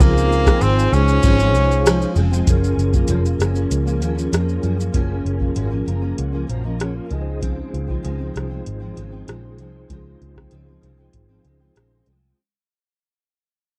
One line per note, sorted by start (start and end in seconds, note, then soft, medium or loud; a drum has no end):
0.00 0.50 C#2 loud
0.00 0.46 C#3 medium
0.00 0.46 F3 medium
0.00 0.46 G#3 medium
0.00 0.64 A#3 loud
0.00 0.44 C4 medium
0.00 2.12 D#4 medium
0.00 2.12 F4 medium
0.00 2.13 G#4 medium
0.00 2.44 G#4 medium
0.00 2.14 C5 medium
0.00 2.44 F5 medium
0.00 2.44 G#5 medium
0.00 kick loud
0.00 ride medium
0.00 shaker medium
0.18 shaker medium
0.32 ride soft
0.32 shaker soft
0.45 0.91 F3 soft
0.45 0.92 G#3 medium
0.45 0.92 C4 medium
0.45 kick loud
0.45 cross-stick medium
0.45 shaker medium
0.61 0.87 G#1 medium
0.61 0.95 C4 medium
0.61 ride medium
0.61 shaker medium
0.79 shaker medium
0.92 1.17 C#2 loud
0.92 1.22 C#3 medium
0.92 1.23 F3 medium
0.92 1.23 G#3 medium
0.92 2.17 C#4 loud
0.92 ride soft
0.92 shaker medium
1.08 shaker medium
1.23 1.54 G#1 loud
1.23 1.39 C#3 medium
1.23 1.39 F3 medium
1.23 1.39 G#3 medium
1.23 1.37 C4 medium
1.23 kick loud
1.23 ride medium
1.23 shaker medium
1.38 1.54 F3 medium
1.38 1.55 G#3 medium
1.38 1.54 C4 medium
1.38 shaker medium
1.54 2.04 C2 medium
1.54 1.85 F3 medium
1.54 1.85 G#3 medium
1.54 ride soft
1.54 shaker medium
1.71 shaker medium
1.86 2.15 F3 medium
1.86 2.16 G#3 medium
1.86 cross-stick loud
1.86 ride medium
1.86 shaker medium
2.02 shaker soft
2.15 2.41 F1 medium
2.15 2.31 C#3 medium
2.15 2.32 F3 medium
2.15 2.32 G#3 medium
2.15 2.30 C4 medium
2.15 ride soft
2.15 shaker soft
2.31 2.46 F3 medium
2.31 2.48 G#3 medium
2.31 2.47 C4 medium
2.31 shaker medium
2.45 2.72 F#1 medium
2.45 2.93 F#2 medium
2.45 2.94 F3 medium
2.45 2.93 A#3 medium
2.45 7.06 C#4 medium
2.45 2.92 C#4 loud
2.45 6.45 F4 medium
2.45 6.46 G#4 medium
2.45 kick loud
2.45 closed hi-hat medium
2.45 shaker medium
2.50 6.47 A#4 medium
2.64 shaker medium
2.77 3.02 F#1 medium
2.77 closed hi-hat soft
2.77 shaker soft
2.93 3.08 F3 soft
2.93 3.08 A#3 soft
2.93 3.09 C#4 medium
2.93 kick medium
2.93 shaker soft
3.08 3.34 F1 medium
3.08 3.24 F#2 medium
3.08 3.25 F3 medium
3.08 3.24 A#3 medium
3.08 3.22 C#4 medium
3.08 closed hi-hat medium
3.08 shaker medium
3.23 3.39 F3 soft
3.23 3.40 A#3 medium
3.23 3.39 C#4 medium
3.23 shaker medium
3.39 3.64 F#1 loud
3.39 3.55 F#2 medium
3.39 3.56 F3 medium
3.39 3.54 A#3 medium
3.39 3.52 C#4 medium
3.39 cross-stick medium
3.39 closed hi-hat medium
3.39 shaker soft
3.54 3.87 F3 soft
3.54 3.85 A#3 medium
3.54 3.84 C#4 medium
3.54 shaker soft
3.71 4.02 C#2 medium
3.71 closed hi-hat medium
3.71 shaker medium
3.85 4.00 F3 soft
3.85 4.00 A#3 medium
3.85 4.01 C#4 medium
3.85 shaker soft
4.00 4.27 D#2 medium
4.00 4.17 F#2 medium
4.00 4.17 F3 medium
4.00 4.15 A#3 medium
4.00 4.14 C#4 medium
4.00 closed hi-hat soft
4.00 shaker soft
4.15 4.31 F3 soft
4.15 4.31 A#3 medium
4.15 4.32 C#4 medium
4.15 shaker soft
4.32 4.58 F2 medium
4.32 4.61 F3 medium
4.32 4.62 A#3 medium
4.32 4.63 C#4 medium
4.32 cross-stick medium
4.32 closed hi-hat medium
4.32 shaker medium
4.49 shaker soft
4.61 4.78 F#2 medium
4.61 4.88 F#2 medium
4.61 4.79 F3 medium
4.61 4.77 A#3 medium
4.61 4.76 C#4 medium
4.61 closed hi-hat soft
4.61 shaker soft
4.77 4.92 F3 soft
4.77 4.93 A#3 soft
4.77 4.94 C#4 soft
4.77 shaker medium
4.92 5.19 F#1 medium
4.92 5.40 F#2 medium
4.92 5.41 F3 medium
4.92 5.40 A#3 medium
4.92 5.38 C#4 loud
4.92 kick loud
4.92 closed hi-hat medium
5.25 5.50 F#1 medium
5.25 closed hi-hat soft
5.39 5.54 F3 soft
5.39 5.55 A#3 medium
5.39 5.56 C#4 medium
5.39 kick medium
5.55 5.81 G#1 medium
5.55 5.71 F#2 medium
5.55 5.72 F3 medium
5.55 5.70 A#3 medium
5.55 5.69 C#4 medium
5.55 closed hi-hat medium
5.70 5.85 F3 soft
5.70 5.86 A#3 medium
5.70 5.86 C#4 medium
5.85 6.12 F#1 medium
5.85 6.02 F#2 medium
5.85 6.02 F3 medium
5.85 6.01 A#3 medium
5.85 6.00 C#4 medium
5.85 6.17 A#5 medium
5.85 closed hi-hat soft
6.01 6.34 F3 soft
6.01 6.33 A#3 medium
6.01 6.31 C#4 medium
6.18 6.43 C#2 medium
6.18 6.33 F#5 medium
6.18 closed hi-hat medium
6.32 6.47 F3 soft
6.32 6.48 A#3 medium
6.32 6.48 C#4 medium
6.32 6.49 G#5 medium
6.47 6.99 A#1 medium
6.47 6.64 F#2 medium
6.47 6.64 F3 medium
6.47 6.63 A#3 medium
6.47 6.62 C#4 medium
6.47 6.64 C5 soft
6.47 6.64 F5 medium
6.47 6.78 A#5 medium
6.47 closed hi-hat soft
6.63 6.78 F3 soft
6.63 6.79 A#3 medium
6.63 6.79 C#4 medium
6.63 6.80 A#4 medium
6.63 6.80 D#5 medium
6.79 7.10 F#2 medium
6.79 7.09 F3 medium
6.79 7.11 A#3 medium
6.79 7.11 C#4 medium
6.79 6.96 G#4 medium
6.79 6.95 C#5 medium
6.79 6.95 F#5 medium
6.79 cross-stick medium
6.79 closed hi-hat medium
6.96 7.10 F4 soft
6.96 7.14 A#4 medium
6.96 7.11 F5 medium
7.09 7.61 C#2 loud
7.09 7.40 C#3 medium
7.09 7.41 F3 medium
7.09 7.41 G#3 medium
7.09 7.42 C4 medium
7.09 12.02 D#4 medium
7.09 12.02 F4 medium
7.09 7.41 D#5 medium
7.09 closed hi-hat soft
7.13 12.03 G#4 medium
7.13 7.20 A#4 medium
7.21 12.07 C5 medium
7.41 7.88 C#3 medium
7.41 7.88 F3 medium
7.41 7.88 G#3 medium
7.41 7.86 C4 medium
7.41 kick loud
7.41 closed hi-hat medium
7.74 7.98 C#2 medium
7.74 closed hi-hat soft
7.87 8.03 F3 soft
7.87 8.03 G#3 medium
7.87 8.03 C4 medium
7.87 kick medium
8.03 8.29 C#2 medium
8.03 8.19 C#3 medium
8.03 8.19 F3 medium
8.03 8.19 G#3 medium
8.03 8.17 C4 medium
8.03 closed hi-hat medium
8.18 8.34 F3 soft
8.18 8.34 G#3 soft
8.18 8.34 C4 medium
8.34 8.60 C2 medium
8.34 8.50 C#3 medium
8.34 8.50 F3 medium
8.34 8.49 G#3 medium
8.34 8.48 C4 medium
8.34 cross-stick medium
8.34 closed hi-hat soft
8.49 8.81 F3 soft
8.49 8.80 G#3 soft
8.49 8.78 C4 medium
8.66 8.91 G#1 medium
8.66 closed hi-hat medium
8.79 8.95 F3 soft
8.79 8.96 G#3 medium
8.79 8.96 C4 medium
8.95 9.22 G#1 medium
8.95 9.11 C#3 medium
8.95 9.12 F3 medium
8.95 9.12 G#3 medium
8.95 9.10 C4 medium
8.95 closed hi-hat soft
9.11 9.27 F3 soft
9.11 9.27 G#3 soft
9.11 9.27 C4 medium
9.27 9.59 A#1 medium
9.27 9.58 C#3 medium
9.27 9.58 F3 medium
9.27 9.59 G#3 medium
9.27 9.60 C4 medium
9.27 cross-stick medium
9.27 closed hi-hat medium
9.58 9.84 C2 medium
9.58 9.89 F3 medium
9.58 9.89 G#3 medium
9.58 9.90 C4 medium
9.58 closed hi-hat soft
9.89 10.15 C#2 medium
9.89 10.36 C#3 medium
9.89 10.36 F3 medium
9.89 10.36 G#3 medium
9.89 10.34 C4 medium
9.89 kick loud
9.89 closed hi-hat medium
10.21 10.46 C#2 medium
10.21 closed hi-hat soft
10.36 10.51 F3 soft
10.36 10.52 G#3 soft
10.36 10.51 C4 soft
10.36 kick medium
10.36 cross-stick medium
10.51 10.77 C#2 medium
10.51 10.67 C#3 medium
10.51 10.67 F3 medium
10.51 10.67 G#3 medium
10.51 10.65 C4 medium
10.51 closed hi-hat medium
10.66 10.82 F3 soft
10.66 10.83 G#3 soft
10.66 10.82 C4 soft
10.81 11.07 C2 medium
10.81 10.97 C#3 medium
10.81 10.98 F3 medium
10.81 10.98 G#3 medium
10.81 10.96 C4 medium
10.81 closed hi-hat soft
10.97 11.30 F3 soft
10.97 11.29 G#3 medium
10.97 11.27 C4 medium
11.13 11.38 G#1 medium
11.13 kick medium
11.13 closed hi-hat medium
11.28 11.44 F3 soft
11.28 11.45 G#3 medium
11.28 11.44 C4 medium
11.44 11.69 C#2 medium
11.44 11.60 C#3 medium
11.44 11.60 F3 medium
11.44 11.60 G#3 medium
11.44 11.59 C4 medium
11.44 closed hi-hat soft
11.60 11.74 F3 soft
11.60 11.75 G#3 soft
11.60 11.75 C4 medium
11.75 12.01 A#1 medium
11.75 12.06 C#3 medium
11.75 12.06 F3 medium
11.75 12.07 G#3 medium
11.75 12.07 C4 medium
11.75 cross-stick medium
11.75 closed hi-hat medium
12.06 12.32 C2 medium
12.06 12.38 F3 medium
12.06 12.38 G#3 medium
12.06 12.38 C4 medium
12.06 closed hi-hat soft